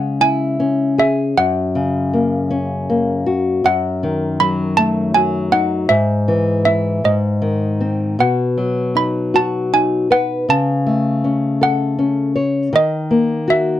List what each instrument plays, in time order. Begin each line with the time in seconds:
Already playing: nylon-string guitar C#3 G#3 C#4
0.21 nylon-string guitar E4, handbells G#5
0.60 nylon-string guitar C#4
0.98 nylon-string guitar G#4, handbells E5
1.37 nylon-string guitar F#2, handbells F#5
1.75 nylon-string guitar C#3
2.13 nylon-string guitar A#3
2.50 nylon-string guitar C#4
2.90 nylon-string guitar A#3
3.26 nylon-string guitar F#4
3.64 nylon-string guitar F#2, handbells F#5
4.03 nylon-string guitar D#3
4.40 nylon-string guitar F#3, handbells B5
4.77 nylon-string guitar A3, handbells A5
5.15 nylon-string guitar F#3, handbells G#5
5.52 nylon-string guitar D#4, handbells F#5
5.89 nylon-string guitar G#2, handbells E5
6.28 nylon-string guitar E3
6.65 nylon-string guitar E4, handbells E5
7.04 nylon-string guitar G#2, handbells D#5
7.42 nylon-string guitar D#3
7.81 nylon-string guitar C4
8.19 nylon-string guitar B2, handbells F#5
8.57 nylon-string guitar F#3
8.95 nylon-string guitar D#4, handbells B5
9.34 nylon-string guitar F#4, handbells A5
9.73 nylon-string guitar D#4, handbells G#5
10.11 nylon-string guitar B4, handbells F#5
10.49 nylon-string guitar C#3, handbells A5
10.87 nylon-string guitar A3
11.24 nylon-string guitar C#4
11.61 nylon-string guitar A4, handbells F#5
11.99 nylon-string guitar C#4
12.36 nylon-string guitar C#5
12.73 nylon-string guitar D#3, handbells D#5
13.11 nylon-string guitar A#3
13.48 nylon-string guitar F#4, handbells E5